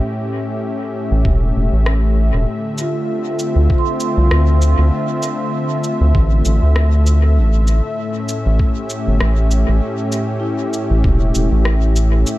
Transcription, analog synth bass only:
1.11 1.24 A1 medium
1.25 1.52 E1 loud
1.56 1.70 E1 medium
1.73 2.18 A1 loud
2.18 2.32 A1 loud
2.34 2.46 E1 loud
3.56 3.68 D2 medium
4.17 4.30 C2 medium
4.31 4.75 D2 medium
4.78 4.91 D2 medium
6.01 6.13 D2 medium
6.15 6.42 A1 loud
6.46 6.60 A1 medium
6.63 7.39 D2 loud
7.38 7.81 A1 loud
8.46 8.58 A1 loud
9.07 9.20 G1 medium
9.21 9.65 A1 medium
9.69 9.81 A1 medium
10.91 11.03 A1 medium
11.04 11.32 E1 loud
11.35 11.50 E1 medium
11.52 12.24 A1 loud

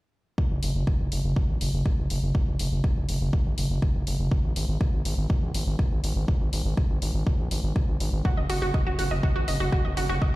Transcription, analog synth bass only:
0.51 0.60 F#1 medium
0.63 0.72 F#1 loud
0.75 0.84 F#1 medium
1.00 1.09 F#1 medium
1.12 1.21 F#1 medium
1.24 1.34 F#1 medium
1.49 1.58 G#1 medium
1.61 1.71 F#1 medium
1.74 1.83 F#1 medium
1.98 2.08 F#1 medium
2.10 2.20 F#1 loud
2.23 2.32 F#1 medium
2.47 2.57 F#1 medium
2.59 2.69 F#1 loud
2.72 2.81 F#1 medium
2.96 3.06 F#1 medium
3.09 3.18 F#1 loud
3.21 3.30 F#1 medium
3.46 3.55 G#1 medium
3.58 3.67 F#1 medium
3.70 3.80 F#1 medium
3.95 4.04 F#1 medium
4.07 4.17 F#1 loud
4.19 4.29 F#1 medium
4.44 4.53 G#1 medium
4.56 4.66 G#1 loud
4.68 4.78 G#1 medium
4.93 5.03 G#1 medium
5.05 5.15 G#1 loud
5.18 5.27 G#1 medium
5.42 5.52 A#1 medium
5.54 5.64 G#1 medium
5.67 5.76 G#1 medium
5.91 6.01 G#1 medium
6.04 6.13 G#1 loud
6.16 6.25 G#1 medium
6.41 6.50 G#1 medium
6.53 6.62 G#1 loud
6.65 6.75 G#1 medium
6.90 6.99 G#1 medium
7.02 7.12 G#1 medium
7.14 7.24 G#1 medium
7.39 7.48 A#1 medium
7.51 7.61 G#1 medium
7.64 7.73 G#1 medium
7.88 7.98 G#1 medium
8.00 8.10 G#1 loud
8.13 8.22 G#1 medium
8.37 8.47 F#1 medium
8.50 8.59 F#1 loud
8.62 8.71 F#1 medium
8.86 8.96 F#1 medium
8.99 9.08 F#1 medium
9.11 9.21 F#1 medium
9.36 9.45 G#1 medium
9.48 9.57 F#1 medium
9.60 9.70 F#1 medium
9.85 9.94 F#1 medium
9.97 10.07 F#1 loud
10.10 10.19 F#1 medium

